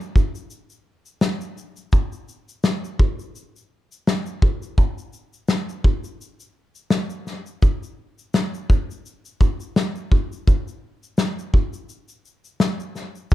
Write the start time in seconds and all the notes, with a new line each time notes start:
0.01 shaker
0.16 kick, shaker
0.35 shaker
0.50 shaker
0.70 shaker
1.06 shaker
1.21 snare, shaker
1.41 shaker
1.58 shaker
1.76 shaker
1.92 kick, shaker
2.12 shaker
2.28 shaker
2.49 shaker
2.63 snare, shaker
2.85 shaker
2.99 kick
3.19 shaker
3.35 shaker
3.56 shaker
3.92 shaker
4.07 snare, shaker
4.26 shaker
4.42 kick
4.62 shaker
4.78 kick, shaker
4.98 shaker
5.13 shaker
5.33 shaker
5.48 snare, shaker
5.69 shaker
5.84 kick
6.04 shaker
6.21 shaker
6.40 shaker
6.75 shaker
6.90 snare, shaker
7.10 shaker
7.27 snare, shaker
7.46 shaker
7.62 kick, shaker
7.83 shaker
8.19 shaker
8.34 snare, shaker
8.54 shaker
8.70 kick, shaker
8.91 shaker
9.06 shaker
9.25 shaker
9.41 kick, shaker
9.60 shaker
9.76 snare, shaker
9.96 shaker
10.12 kick
10.32 shaker
10.47 kick, shaker
10.68 shaker
11.03 shaker
11.18 snare, shaker
11.39 shaker
11.54 kick
11.73 shaker
11.89 shaker
12.08 shaker
12.25 shaker
12.44 shaker
12.60 snare, shaker
12.80 shaker
12.95 snare, shaker
13.15 shaker
13.31 shaker